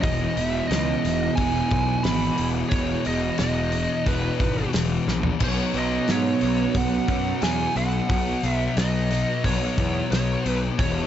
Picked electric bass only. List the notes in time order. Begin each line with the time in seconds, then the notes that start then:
0.03 E1
0.37 E1
0.71 C#2
1.05 E1
1.38 E1
1.71 B1
2.06 G#1
2.39 E1
2.72 E1
3.07 E1
3.40 E1
4.06 E1
4.40 G#1
4.74 E1
5.08 A#1
5.41 B1
5.75 B1
6.09 G#2
6.43 B1
6.75 B1
7.08 F#2
7.43 E2
7.76 B1
8.09 B1
8.44 B1
8.77 B1
9.44 B1
9.78 E2
10.12 B1
10.46 B1
10.79 E1